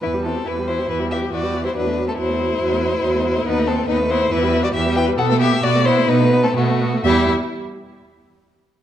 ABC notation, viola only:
X:1
M:4/4
L:1/16
Q:1/4=137
K:Em
V:1 name="Viola" clef=bass
E, G, E, G, E, G, E, G, E, G, E, G, E, G, E, G, | F, A, F, A, F, A, F, A, F, A, F, A, F, A, F, A, | B, A, B, A, B, A, B, A, E, G, E, G, E, G, E, G, | B, A, B, A, B, A, B, A, B, A, B, A, B, A, B, A, |
G,2 z12 z2 |]